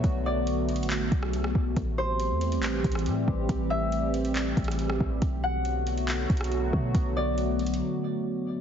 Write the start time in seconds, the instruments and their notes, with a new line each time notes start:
Already playing: analog synth pad D3 F#3 A3 B3 F#4, harp F#5
0.04 808-style bass B1, kick, closed hi-hat
0.26 harp D5
0.47 closed hi-hat
0.69 closed hi-hat
0.76 808-style bass A1, closed hi-hat
0.83 closed hi-hat
0.90 clap, closed hi-hat
1.12 808-style bass B1, kick, closed hi-hat
1.23 cross-stick
1.33 808-style bass C2, closed hi-hat
1.44 808-style bass B1, cross-stick
1.55 808-style bass B1, kick
1.76 808-style bass A1, analog synth pad E3 G3 C4 G4, kick, closed hi-hat
1.98 harp C5
2.20 closed hi-hat
2.30 808-style bass E2
2.41 closed hi-hat
2.52 closed hi-hat
2.57 808-style bass A1
2.63 clap, closed hi-hat
2.84 808-style bass A1, kick, closed hi-hat
2.92 cross-stick, closed hi-hat
2.99 closed hi-hat
3.06 808-style bass A2, closed hi-hat
3.28 808-style bass A1, kick
3.49 808-style bass A1, kick, closed hi-hat
3.70 harp E5
3.92 closed hi-hat
4.14 closed hi-hat
4.25 closed hi-hat
4.36 clap, closed hi-hat
4.57 808-style bass A1, kick, closed hi-hat
4.64 cross-stick, closed hi-hat
4.72 closed hi-hat
4.79 closed hi-hat
4.90 cross-stick
5.00 808-style bass A1, kick
5.22 808-style bass B1, analog synth pad D3 F#3 A3 B3 F#4, kick, closed hi-hat
5.44 harp F#5
5.65 closed hi-hat
5.87 closed hi-hat
5.98 closed hi-hat
6.08 clap, closed hi-hat
6.30 808-style bass B1, kick, closed hi-hat
6.37 cross-stick, closed hi-hat
6.44 closed hi-hat
6.52 closed hi-hat
6.73 808-style bass B2, kick
6.95 808-style bass B1, kick, closed hi-hat
7.17 harp D5
7.38 closed hi-hat
7.59 closed hi-hat
7.67 closed hi-hat
7.74 closed hi-hat